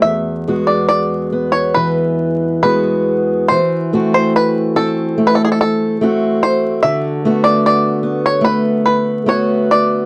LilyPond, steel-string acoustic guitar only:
\new Staff \with { instrumentName = "Steel-string acoustic guitar" } { \time 4/4 \key e \mixolydian \tempo 4 = 72 e,8 <gis b fis'>4 b8 e4 <gis b fis'>4 | e8 <a c' fis'>4 c'8 a4 <a c' fis'>4 | d8 <a b fis'>4 b8 a4 <a b fis'>4 | }